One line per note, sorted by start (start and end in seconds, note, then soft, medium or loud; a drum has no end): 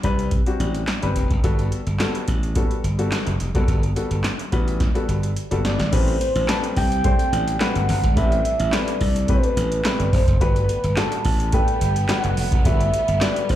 0.03 0.40 C2 medium
0.03 0.29 G3 medium
0.03 0.30 C4 medium
0.03 0.30 D4 medium
0.03 0.30 B4 medium
0.03 kick medium
0.03 closed hi-hat medium
0.19 closed hi-hat medium
0.31 kick loud
0.31 closed hi-hat medium
0.46 0.80 G3 medium
0.46 0.81 C4 medium
0.46 0.81 D4 medium
0.46 0.81 F#4 medium
0.46 closed hi-hat soft
0.60 0.83 A1 medium
0.60 closed hi-hat medium
0.75 closed hi-hat medium
0.87 snare loud
0.87 clap loud
0.87 closed hi-hat medium
1.02 1.14 G1 medium
1.02 1.28 G3 medium
1.02 1.28 C4 medium
1.02 1.28 D4 medium
1.02 1.29 B4 medium
1.02 closed hi-hat medium
1.16 1.28 F1 medium
1.16 kick medium
1.16 closed hi-hat medium
1.31 1.42 F#1 medium
1.31 kick medium
1.31 closed hi-hat soft
1.43 1.68 G1 loud
1.43 1.78 G3 medium
1.43 1.79 B3 medium
1.43 1.79 F#4 medium
1.43 1.79 A4 loud
1.43 kick loud
1.43 closed hi-hat medium
1.59 closed hi-hat soft
1.72 closed hi-hat medium
1.87 1.98 G1 medium
1.87 closed hi-hat soft
1.99 2.35 G3 medium
1.99 2.35 B3 medium
1.99 2.35 F#4 medium
1.99 2.35 A4 loud
1.99 snare loud
1.99 clap medium
1.99 closed hi-hat medium
2.15 closed hi-hat medium
2.28 2.64 A1 medium
2.28 kick medium
2.28 closed hi-hat medium
2.43 closed hi-hat medium
2.55 2.82 G3 medium
2.55 2.82 B3 medium
2.55 2.82 F#4 medium
2.55 2.82 A4 medium
2.55 kick loud
2.55 closed hi-hat medium
2.71 closed hi-hat soft
2.84 3.08 G1 medium
2.84 closed hi-hat medium
2.99 3.33 G3 medium
2.99 3.33 B3 medium
2.99 3.33 F#4 medium
2.99 3.33 A4 medium
2.99 closed hi-hat medium
3.12 snare loud
3.12 clap medium
3.12 closed hi-hat medium
3.27 3.38 F#1 medium
3.27 closed hi-hat medium
3.40 3.53 F1 medium
3.40 closed hi-hat medium
3.55 3.66 F#1 medium
3.55 3.80 G3 medium
3.55 3.81 B3 medium
3.55 3.81 F#4 medium
3.55 3.81 A4 loud
3.55 kick medium
3.55 closed hi-hat soft
3.68 3.92 G1 loud
3.68 kick loud
3.68 closed hi-hat medium
3.83 closed hi-hat soft
3.96 4.31 G3 medium
3.96 4.31 B3 medium
3.96 4.31 F#4 medium
3.96 4.31 A4 medium
3.96 closed hi-hat medium
4.11 4.22 G1 medium
4.11 closed hi-hat soft
4.24 snare loud
4.24 clap medium
4.24 closed hi-hat medium
4.39 closed hi-hat medium
4.52 4.89 A1 medium
4.52 4.78 G3 medium
4.52 4.78 B3 medium
4.52 4.78 F#4 medium
4.52 4.78 B4 medium
4.52 kick medium
4.52 closed hi-hat medium
4.68 closed hi-hat medium
4.80 kick loud
4.80 snare medium
4.80 closed hi-hat medium
4.95 5.29 G3 medium
4.95 5.29 B3 medium
4.95 5.29 F#4 medium
4.95 5.29 A4 medium
4.95 closed hi-hat soft
5.08 5.32 G1 medium
5.08 closed hi-hat medium
5.23 closed hi-hat medium
5.36 closed hi-hat medium
5.51 5.62 F#1 medium
5.51 5.77 G3 medium
5.51 5.77 B3 medium
5.51 5.77 F#4 medium
5.51 5.77 A4 loud
5.51 closed hi-hat medium
5.64 5.77 G1 medium
5.64 5.94 D5 loud
5.64 snare medium
5.64 closed hi-hat medium
5.79 5.90 G#1 medium
5.79 snare medium
5.79 closed hi-hat soft
5.92 6.16 A1 loud
5.92 10.37 C3 medium
5.92 10.37 G3 medium
5.92 6.27 A3 medium
5.92 8.14 C4 medium
5.92 6.27 C4 medium
5.92 10.37 D4 medium
5.92 6.27 D4 medium
5.92 6.27 G4 medium
5.92 6.27 B4 medium
5.92 6.20 C5 loud
5.92 kick loud
5.92 closed hi-hat loud
5.92 crash loud
6.08 closed hi-hat medium
6.21 6.47 C5 loud
6.21 closed hi-hat medium
6.35 6.47 A1 loud
6.35 closed hi-hat medium
6.48 6.83 A3 medium
6.48 6.83 C4 medium
6.48 6.83 D4 medium
6.48 6.83 G4 medium
6.48 6.84 B4 medium
6.48 6.61 A5 loud
6.48 snare loud
6.48 clap loud
6.48 closed hi-hat loud
6.64 closed hi-hat medium
6.77 7.13 C2 loud
6.77 7.57 G5 loud
6.77 kick medium
6.77 open hi-hat medium
6.92 closed hi-hat medium
7.04 7.39 A3 medium
7.04 7.39 C4 medium
7.04 7.39 D4 medium
7.04 7.40 G4 medium
7.04 7.40 C5 medium
7.04 kick loud
7.04 closed hi-hat medium
7.19 closed hi-hat medium
7.32 7.56 A1 medium
7.32 closed hi-hat medium
7.48 closed hi-hat medium
7.60 7.95 A3 medium
7.60 7.95 C4 medium
7.60 7.95 D4 medium
7.60 7.96 G4 medium
7.60 7.96 B4 medium
7.60 8.13 F#5 loud
7.60 snare loud
7.60 clap loud
7.60 closed hi-hat medium
7.76 7.87 G1 medium
7.76 closed hi-hat medium
7.89 8.01 G1 loud
7.89 open hi-hat medium
8.04 8.15 G#1 medium
8.04 kick loud
8.04 closed hi-hat medium
8.16 8.40 A1 loud
8.16 8.51 A3 medium
8.16 10.39 A3 medium
8.16 8.51 C4 medium
8.16 8.51 D4 medium
8.16 8.52 G4 medium
8.16 8.52 B4 medium
8.16 8.43 E5 loud
8.16 kick loud
8.16 closed hi-hat medium
8.32 closed hi-hat medium
8.45 8.75 E5 loud
8.45 closed hi-hat medium
8.60 8.71 A1 medium
8.60 closed hi-hat medium
8.72 9.07 A3 medium
8.72 9.08 C4 medium
8.72 9.08 D4 medium
8.72 9.08 G4 medium
8.72 9.08 B4 medium
8.72 9.29 D5 loud
8.72 snare loud
8.72 clap medium
8.72 closed hi-hat loud
8.88 closed hi-hat medium
9.01 9.37 C2 medium
9.01 kick medium
9.01 open hi-hat medium
9.16 closed hi-hat medium
9.28 9.64 A3 medium
9.28 9.64 C4 medium
9.28 9.64 D4 medium
9.28 9.64 G4 medium
9.28 10.15 B4 loud
9.28 9.64 B4 medium
9.28 kick loud
9.28 closed hi-hat medium
9.44 closed hi-hat medium
9.57 9.81 A1 medium
9.57 closed hi-hat medium
9.72 closed hi-hat medium
9.84 10.20 A3 medium
9.84 10.20 C4 medium
9.84 10.20 D4 medium
9.84 10.20 G4 medium
9.84 10.20 B4 medium
9.84 snare loud
9.84 clap loud
9.84 closed hi-hat medium
10.00 10.11 G1 medium
10.00 closed hi-hat medium
10.13 10.26 F1 medium
10.13 10.43 C5 loud
10.13 kick medium
10.13 open hi-hat medium
10.28 10.39 F#1 medium
10.28 kick loud
10.28 closed hi-hat medium
10.41 10.65 G1 loud
10.41 13.55 A2 medium
10.41 13.55 G3 medium
10.41 10.76 A3 medium
10.41 13.55 B3 loud
10.41 10.76 D4 medium
10.41 10.76 F#4 medium
10.41 10.76 G4 medium
10.41 10.76 B4 medium
10.41 10.99 B4 loud
10.41 kick loud
10.41 closed hi-hat medium
10.56 closed hi-hat medium
10.69 closed hi-hat medium
10.84 10.95 G1 medium
10.84 closed hi-hat soft
10.96 11.32 A3 medium
10.96 11.32 D4 medium
10.96 11.32 F#4 medium
10.96 11.32 G4 medium
10.96 11.32 A4 medium
10.96 11.53 A5 loud
10.96 snare loud
10.96 clap medium
10.96 closed hi-hat loud
11.12 closed hi-hat medium
11.25 11.61 A1 medium
11.25 kick medium
11.25 open hi-hat medium
11.40 closed hi-hat medium
11.52 11.88 A3 medium
11.52 11.88 D4 medium
11.52 11.88 G4 medium
11.52 11.88 A4 medium
11.52 11.88 B4 medium
11.52 12.11 G5 loud
11.52 kick loud
11.52 closed hi-hat medium
11.68 closed hi-hat medium
11.81 12.05 G1 medium
11.81 closed hi-hat medium
11.96 closed hi-hat medium
12.08 12.44 A3 medium
12.08 12.44 D4 medium
12.08 12.44 F#4 medium
12.08 12.44 G4 medium
12.08 12.44 B4 medium
12.08 12.67 F#5 loud
12.08 snare loud
12.08 clap loud
12.08 closed hi-hat loud
12.24 12.35 F#1 medium
12.24 closed hi-hat medium
12.37 12.50 F1 medium
12.37 open hi-hat medium
12.52 12.63 F#1 medium
12.52 kick loud
12.52 closed hi-hat medium
12.65 12.89 G1 loud
12.65 13.00 A3 medium
12.65 13.00 D4 medium
12.65 13.00 F#4 medium
12.65 13.00 G4 medium
12.65 13.00 B4 medium
12.65 13.24 E5 loud
12.65 kick loud
12.65 closed hi-hat medium
12.80 closed hi-hat medium
12.94 closed hi-hat medium
13.08 13.19 G1 medium
13.08 closed hi-hat medium
13.21 13.55 A3 medium
13.21 13.55 D4 medium
13.21 13.55 F#4 medium
13.21 13.55 G4 medium
13.21 13.55 B4 medium
13.21 13.50 D5 medium
13.21 snare loud
13.21 clap medium
13.21 closed hi-hat loud
13.36 closed hi-hat medium
13.49 13.55 A1 medium
13.49 13.55 C5 medium
13.49 kick medium
13.49 open hi-hat medium